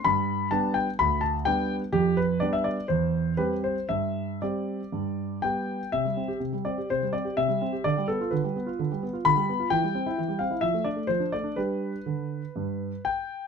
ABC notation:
X:1
M:4/4
L:1/16
Q:1/4=126
K:C
V:1 name="Grand piano"
b4 a2 g2 b2 a2 g4 | G2 B2 d e d2 c4 B2 c2 | e4 d8 g4 | e6 d2 c2 d2 e4 |
d2 A2 B6 z2 b4 | g6 f2 e2 d2 c2 d2 | B12 g4 |]
V:2 name="Grand piano"
G,,4 [G,B,D]4 D,,4 [G,B,D]4 | F,,4 [G,B,D]4 E,,4 [G,CG]4 | G,,4 [G,CG]4 G,,4 [G,B,G]4 | C, G, C G C, G, C G C, G, C G C, G, C G |
D, G, B, F D, G, B, F D, G, B, F D, G, B, F | E, G, C E E, G, C E F, A, D A, F, D A, D | [G,DG]4 D,4 G,,4 z4 |]